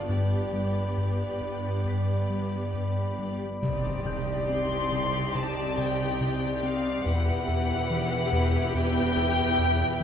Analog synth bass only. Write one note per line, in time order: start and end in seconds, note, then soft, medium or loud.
0.09 0.36 G2 medium
0.53 0.80 G3 soft
0.97 1.24 G2 soft
1.41 1.68 G2 soft
1.85 2.12 G2 medium
2.30 2.56 G3 soft
2.74 3.01 G2 soft
3.19 3.45 G3 soft
3.63 3.89 C3 medium
4.06 4.32 C3 medium
4.49 4.75 C4 soft
4.92 5.18 C3 medium
5.35 5.60 C3 soft
5.78 6.04 C3 soft
6.21 6.46 C3 medium
6.63 6.89 C4 medium
7.06 7.31 E2 medium
7.48 7.73 E2 medium
7.90 8.16 E3 medium
8.32 8.58 E2 medium
8.74 9.00 E2 medium
9.17 9.42 E2 soft
9.58 9.84 E2 medium
10.00 10.03 E3 medium